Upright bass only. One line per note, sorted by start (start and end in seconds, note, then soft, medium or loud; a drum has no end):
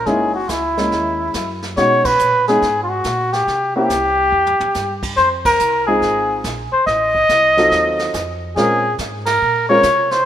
0.07 0.48 F#1 medium
0.49 0.91 C#2 medium
0.92 1.33 D#2 medium
1.35 1.76 F#2 medium
1.77 2.18 B2 medium
2.20 2.61 A#2 medium
2.62 3.03 G#2 medium
3.05 3.46 A#2 medium
3.47 3.88 C3 medium
3.90 4.31 C2 medium
4.32 4.58 E2 medium
4.61 muted upright bass stroke soft
4.75 5.16 G2 medium
5.17 5.58 F2 medium
5.60 6.01 C2 medium
6.02 6.43 G#1 medium
6.44 6.70 A#1 medium
6.73 muted upright bass stroke soft
6.87 7.28 A1 medium
7.29 7.70 C2 medium
7.71 8.13 D#2 medium
8.14 8.55 F2 medium
8.56 8.97 A#2 medium
8.99 9.40 G#2 medium
9.42 9.83 A#2 medium
9.84 10.25 C3 medium